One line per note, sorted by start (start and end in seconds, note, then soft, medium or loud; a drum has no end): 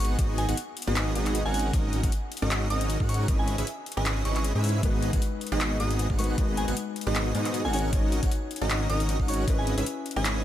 0.00 0.17 G#1 loud
0.00 0.17 B3 medium
0.00 0.17 D#4 medium
0.00 0.17 F#4 medium
0.00 0.17 G#4 medium
0.00 0.17 F#5 medium
0.00 sub drop medium
0.05 closed hi-hat medium
0.19 0.47 G#1 loud
0.19 0.46 B3 medium
0.19 0.46 D#4 medium
0.19 0.46 F#4 medium
0.19 0.46 G#4 medium
0.19 0.46 D#5 loud
0.19 kick loud
0.19 closed hi-hat medium
0.38 0.48 G#5 medium
0.38 closed hi-hat medium
0.49 0.54 G#1 loud
0.49 0.56 B3 loud
0.49 0.56 D#4 medium
0.49 0.56 F#4 medium
0.49 0.56 G#4 medium
0.49 0.56 F#5 loud
0.49 closed hi-hat medium
0.57 closed hi-hat medium
0.77 closed hi-hat medium
0.82 closed hi-hat medium
0.87 1.14 G#1 loud
0.87 1.13 B3 loud
0.87 1.13 D#4 medium
0.87 1.13 F#4 medium
0.87 1.13 G#4 loud
0.87 1.13 D#5 loud
0.96 clap loud
0.96 closed hi-hat medium
1.15 1.43 G#1 loud
1.15 1.43 B3 loud
1.15 1.43 D#4 medium
1.15 1.43 F#4 medium
1.15 1.43 G#4 medium
1.15 1.43 D#5 loud
1.15 closed hi-hat medium
1.26 clap soft
1.26 closed hi-hat medium
1.35 closed hi-hat medium
1.45 1.72 G#1 loud
1.45 1.71 C#4 medium
1.45 1.71 D#4 medium
1.45 1.71 F#4 medium
1.45 1.71 A#4 medium
1.45 1.71 F#5 medium
1.45 1.52 G#5 loud
1.54 1.84 G#5 medium
1.54 open hi-hat medium
1.59 closed hi-hat medium
1.73 2.01 G#1 medium
1.73 2.01 C#4 medium
1.73 2.01 D#4 medium
1.73 2.01 F#4 medium
1.73 2.01 A#4 medium
1.73 2.01 D#5 medium
1.73 2.01 D#5 loud
1.73 kick loud
1.73 closed hi-hat medium
1.93 closed hi-hat medium
2.03 2.09 G#1 loud
2.03 2.11 C#4 loud
2.03 2.11 D#4 medium
2.03 2.11 F#4 medium
2.03 2.11 A#4 medium
2.03 2.11 F#5 loud
2.03 kick loud
2.03 closed hi-hat medium
2.12 closed hi-hat medium
2.32 closed hi-hat medium
2.37 closed hi-hat medium
2.42 2.69 G#1 loud
2.42 2.68 C#4 loud
2.42 2.68 D#4 medium
2.42 2.68 F#4 medium
2.42 2.68 A#4 medium
2.42 2.68 D#5 loud
2.51 clap loud
2.51 closed hi-hat medium
2.70 2.98 G#1 loud
2.70 2.98 C#4 loud
2.70 2.98 D#4 medium
2.70 2.98 F#4 medium
2.70 2.98 A#4 medium
2.70 2.98 D#5 loud
2.70 2.80 D#6 loud
2.70 closed hi-hat medium
2.81 closed hi-hat medium
2.90 closed hi-hat medium
3.00 3.27 G#2 loud
3.00 3.26 C#4 medium
3.00 3.26 D#4 medium
3.00 3.26 F#4 medium
3.00 3.26 A#4 medium
3.00 3.26 F#5 medium
3.00 kick medium
3.09 3.19 C#6 medium
3.09 open hi-hat medium
3.14 closed hi-hat medium
3.28 3.56 G#1 medium
3.28 3.56 C#4 medium
3.28 3.56 E4 medium
3.28 3.56 G#4 medium
3.28 3.56 B4 medium
3.28 3.56 D#5 medium
3.28 kick loud
3.28 closed hi-hat medium
3.39 3.67 G#5 loud
3.48 closed hi-hat medium
3.58 3.64 G#1 loud
3.58 3.65 C#4 loud
3.58 3.65 E4 medium
3.58 3.65 G#4 medium
3.58 3.65 B4 medium
3.58 3.65 E5 loud
3.58 closed hi-hat medium
3.67 closed hi-hat medium
3.86 closed hi-hat soft
3.92 closed hi-hat medium
3.97 4.23 G#1 loud
3.97 4.23 C#4 loud
3.97 4.23 E4 medium
3.97 4.23 G#4 medium
3.97 4.23 B4 medium
3.97 4.23 D#5 loud
3.97 4.05 G#5 medium
4.06 clap loud
4.06 closed hi-hat medium
4.25 4.53 G#1 loud
4.25 4.53 C#4 loud
4.25 4.53 E4 medium
4.25 4.53 G#4 medium
4.25 4.53 B4 medium
4.25 4.53 D#5 loud
4.25 4.32 C#6 medium
4.25 closed hi-hat medium
4.36 4.41 C#6 medium
4.36 clap soft
4.36 closed hi-hat medium
4.44 closed hi-hat medium
4.55 4.81 G#2 loud
4.55 4.81 C#4 medium
4.55 4.81 E4 medium
4.55 4.81 G#4 medium
4.55 4.81 B4 medium
4.55 4.81 E5 medium
4.64 open hi-hat medium
4.69 closed hi-hat medium
4.81 5.11 G#1 medium
4.81 6.16 G#3 medium
4.81 5.11 B3 medium
4.81 6.16 D#4 medium
4.81 5.11 D#4 medium
4.81 5.11 F#4 medium
4.81 6.17 F#4 medium
4.81 5.11 G#4 medium
4.81 5.11 D#5 loud
4.81 kick loud
4.81 closed hi-hat medium
4.85 6.18 B4 loud
5.03 closed hi-hat medium
5.13 5.19 G#1 loud
5.13 5.20 B3 loud
5.13 5.20 D#4 medium
5.13 5.20 F#4 medium
5.13 5.20 G#4 medium
5.13 5.20 F#5 loud
5.13 kick loud
5.13 closed hi-hat medium
5.22 closed hi-hat medium
5.41 closed hi-hat soft
5.47 closed hi-hat medium
5.52 5.78 G#1 loud
5.52 5.78 B3 loud
5.52 5.78 D#4 loud
5.52 5.78 F#4 loud
5.52 5.78 G#4 loud
5.52 5.78 D#5 loud
5.61 clap loud
5.61 closed hi-hat medium
5.80 6.08 G#1 loud
5.80 6.07 B3 loud
5.80 6.07 D#4 medium
5.80 6.07 F#4 medium
5.80 6.07 G#4 medium
5.80 6.07 D#5 loud
5.80 5.90 D#6 medium
5.80 closed hi-hat medium
5.91 closed hi-hat medium
5.99 closed hi-hat medium
6.10 6.36 G#1 loud
6.10 6.36 B3 medium
6.10 6.36 D#4 medium
6.10 6.36 F#4 medium
6.10 6.36 G#4 medium
6.10 6.36 F#5 medium
6.10 kick medium
6.18 6.34 G#3 loud
6.18 6.36 D#4 medium
6.18 6.36 F#4 medium
6.18 6.36 B4 loud
6.18 6.29 C#6 loud
6.18 open hi-hat medium
6.24 closed hi-hat medium
6.36 6.66 G#1 medium
6.36 7.70 G#3 medium
6.36 6.65 B3 medium
6.36 7.71 D#4 medium
6.36 6.65 D#4 medium
6.36 6.65 F#4 medium
6.36 7.72 F#4 medium
6.36 6.65 G#4 medium
6.36 7.72 B4 medium
6.36 6.65 D#5 loud
6.36 6.65 D#5 medium
6.36 kick loud
6.36 closed hi-hat medium
6.57 6.67 G#5 medium
6.57 closed hi-hat medium
6.68 6.73 G#1 loud
6.68 6.75 B3 loud
6.68 6.75 D#4 medium
6.68 6.75 F#4 medium
6.68 6.75 G#4 medium
6.68 6.75 F#5 loud
6.68 closed hi-hat medium
6.77 closed hi-hat medium
6.96 closed hi-hat soft
7.01 closed hi-hat medium
7.07 7.33 G#1 loud
7.07 7.33 B3 loud
7.07 7.33 D#4 loud
7.07 7.33 F#4 medium
7.07 7.33 G#4 loud
7.07 7.33 D#5 loud
7.15 clap loud
7.15 closed hi-hat medium
7.35 7.66 G#2 loud
7.35 7.62 B3 medium
7.35 7.62 D#4 medium
7.35 7.62 F#4 medium
7.35 7.62 G#4 medium
7.35 7.62 D#5 loud
7.35 closed hi-hat medium
7.45 clap soft
7.45 closed hi-hat medium
7.54 closed hi-hat medium
7.65 7.91 G#1 loud
7.65 7.91 C#4 medium
7.65 7.91 D#4 medium
7.65 7.91 F#4 medium
7.65 7.91 A#4 medium
7.65 7.91 F#5 medium
7.65 7.72 G#5 loud
7.73 7.89 D#4 loud
7.73 7.91 F#4 medium
7.73 7.91 C#5 loud
7.73 8.03 G#5 loud
7.73 open hi-hat medium
7.79 closed hi-hat medium
7.91 8.21 G#1 medium
7.91 8.20 C#4 medium
7.91 9.25 D#4 medium
7.91 8.20 D#4 medium
7.91 9.26 F#4 medium
7.91 8.20 F#4 medium
7.91 8.20 A#4 medium
7.91 8.20 D#5 medium
7.91 8.20 D#5 loud
7.91 kick loud
7.91 closed hi-hat medium
7.95 9.27 C#5 loud
8.12 closed hi-hat medium
8.23 8.28 G#1 loud
8.23 8.30 F#4 loud
8.23 8.30 A#4 medium
8.23 8.30 F#5 loud
8.23 kick loud
8.23 closed hi-hat medium
8.31 closed hi-hat medium
8.51 closed hi-hat soft
8.56 closed hi-hat medium
8.61 8.88 G#1 loud
8.61 8.87 C#4 loud
8.61 8.87 D#4 loud
8.61 8.88 F#4 loud
8.61 8.87 A#4 medium
8.61 8.87 D#5 loud
8.61 8.88 D#5 loud
8.70 clap loud
8.70 closed hi-hat medium
8.90 9.17 G#1 loud
8.90 9.17 C#4 medium
8.90 9.17 D#4 medium
8.90 9.17 F#4 medium
8.90 9.17 A#4 medium
8.90 9.17 D#5 loud
8.90 9.00 D#6 medium
8.90 closed hi-hat medium
9.00 closed hi-hat medium
9.09 closed hi-hat medium
9.20 9.46 G#1 loud
9.20 9.46 C#4 medium
9.20 9.46 D#4 medium
9.20 9.46 F#4 medium
9.20 9.46 A#4 medium
9.20 9.46 F#5 medium
9.20 kick medium
9.27 9.45 D#4 loud
9.27 9.46 F#4 medium
9.27 9.46 C#5 loud
9.27 9.38 C#6 medium
9.27 open hi-hat medium
9.34 closed hi-hat medium
9.46 9.76 G#1 loud
9.46 10.44 C#4 medium
9.46 9.75 C#4 medium
9.46 9.75 E4 medium
9.46 10.44 E4 medium
9.46 9.75 G#4 medium
9.46 9.75 B4 medium
9.46 9.75 D#5 loud
9.46 kick loud
9.46 closed hi-hat medium
9.50 10.44 B4 medium
9.58 9.86 G#5 loud
9.67 closed hi-hat medium
9.78 9.83 G#1 loud
9.78 9.85 C#4 loud
9.78 9.85 E4 medium
9.78 9.85 G#4 medium
9.78 9.85 B4 medium
9.78 9.85 E5 loud
9.78 closed hi-hat medium
9.86 closed hi-hat medium
10.06 closed hi-hat soft
10.11 closed hi-hat medium
10.16 10.44 G#1 loud
10.16 10.42 C#4 loud
10.16 10.42 E4 loud
10.16 10.42 G#4 medium
10.16 10.42 B4 medium
10.16 10.42 D#5 loud
10.16 10.25 G#5 loud
10.25 clap loud
10.25 closed hi-hat medium